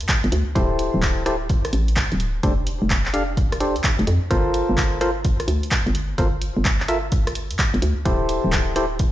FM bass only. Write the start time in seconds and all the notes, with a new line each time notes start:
0.00 G2
0.24 G1
0.32 D2
0.56 D1
0.94 D1
1.73 A1
2.12 D1
2.43 F1
2.82 F1
3.76 F2
3.99 F1
4.07 F2
4.31 G1
4.69 G1
5.48 D2
5.87 G1
6.18 G1
6.57 G1
7.50 G2
7.74 G1
7.82 D2
8.06 D1
8.44 D1